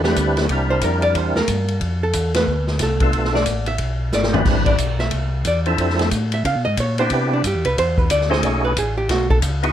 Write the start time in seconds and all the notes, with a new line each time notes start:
Already playing: E2
0.04 G3 C4 D4 E4 G4 B4, snare
0.16 D2, kick, hi-hat pedal, ride
0.37 snare, ride
0.49 C2 G3 C4 D4 E4 A#4, kick, ride
0.70 C5
0.81 F2 A#4, kick, hi-hat pedal, ride
1.02 D5, ride
1.15 E2 C5, kick, ride
1.35 E2 A#4, snare
1.48 G2, kick, hi-hat pedal, ride
1.68 ride
1.81 F2, kick, ride
2.03 A4
2.13 E2, kick, hi-hat pedal, ride
2.34 B4, snare, ride
2.47 D2, kick
2.67 snare
2.79 C2 A4, kick, snare, hi-hat pedal, ride
3.00 A3 B3 D4 F4 A4, kick, ride
3.13 B1, ride
3.25 snare
3.35 D5, snare
3.46 A1, kick, hi-hat pedal, ride
3.66 E5, ride
3.78 B1, kick, ride
4.12 G#1 D5, snare, hi-hat pedal
4.23 snare
4.33 G3 C4 D4 E4 B4, floor tom
4.45 A1, kick, snare, crash
4.66 D5, kick, ride
4.78 B1, kick, hi-hat pedal, ride
4.99 E5, snare
5.11 C2, kick, ride
5.45 E2 D5, kick, hi-hat pedal, ride
5.66 F3 C4 D4 E4 A4, ride
5.78 F2, kick, ride
5.90 snare
5.99 snare, ride
6.11 A2, kick, hi-hat pedal, ride
6.32 E5, ride
6.45 C#3 F5, kick, ride
6.55 B2
6.65 G#2 D#5
6.77 A#2 C#5, kick, hi-hat pedal, ride
6.98 B3 C4 D4 E4 G4 C5, ride
7.10 C3 B4, kick, ride
7.33 D4
7.44 G2 G4, kick, hi-hat pedal, ride
7.55 E2
7.65 C2 B4, ride
7.77 E2 C5, kick, ride
7.98 B4, kick
8.10 D2 D5, kick, hi-hat pedal, ride
8.21 snare
8.30 A3 C#4 D#4 F#4 G#4 C5, snare
8.43 B1 C#5, kick, ride
8.65 B4
8.77 A1 G#4, kick, hi-hat pedal, ride
8.98 G4
9.09 B1 F#4, kick, snare, ride
9.30 A4, kick
9.42 C#2, kick, hi-hat pedal, ride
9.63 B3 D#4 E4 F#4 G#4, ride